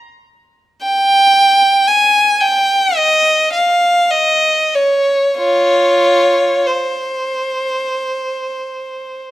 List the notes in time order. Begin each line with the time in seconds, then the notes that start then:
0.82 G5
1.87 G#5
2.40 G5
2.96 D#5
3.53 F5
4.11 D#5
4.75 C#5
5.38 F4 C#5
6.67 C5